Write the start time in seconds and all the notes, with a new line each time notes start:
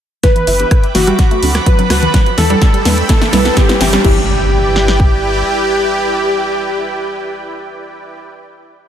0.23 E3 B3 G4 B4 E5 G5 B5 D6, kick, snare, closed hi-hat, riser, low conga
0.36 E3, closed hi-hat
0.47 G1 E4, open hi-hat
0.60 E3 B3 D4 G4, closed hi-hat
0.71 kick, cross-stick, closed hi-hat
0.83 closed hi-hat
0.95 G1 E3 B3 D4 F#4 G4, snare, open hi-hat, high conga
1.07 G3, closed hi-hat
1.19 C4 F#5 A5, kick, snare, closed hi-hat
1.31 A3, closed hi-hat
1.43 D2 F#3 C4 D4 A4, open hi-hat
1.55 cross-stick, snare, closed hi-hat
1.66 F#3 B4, kick, closed hi-hat
1.79 F#3 C4 D4 A4, closed hi-hat
1.90 D2 F#4, cross-stick, snare, open hi-hat
2.03 closed hi-hat, low conga
2.14 G3 D4 E4 B4 D5 G5 B5 E6, kick, snare, closed hi-hat, low conga
2.26 closed hi-hat
2.38 E2 E3 A4, snare, open hi-hat
2.50 G3 D4 E4 B4, closed hi-hat
2.62 kick, snare, closed hi-hat
2.74 G3, closed hi-hat
2.85 E2 G3 D4 E4 B4, snare, open hi-hat, high conga
2.98 closed hi-hat
3.09 E3 C4 A4, kick, snare, closed hi-hat
3.22 E3, snare, closed hi-hat
3.33 C2 G3 C4 E4 B4, snare, open hi-hat
3.45 snare, closed hi-hat
3.57 G4, kick, snare, closed hi-hat, low conga
3.69 G3 C4 E4 B4, snare, closed hi-hat
3.81 G1 E3, snare, open hi-hat
3.93 G3, snare, closed hi-hat
4.04 G1 E3 B3 D4 E4 G4 B4 D5 G5, kick, crash, impact
4.76 snare
4.88 snare
5.00 kick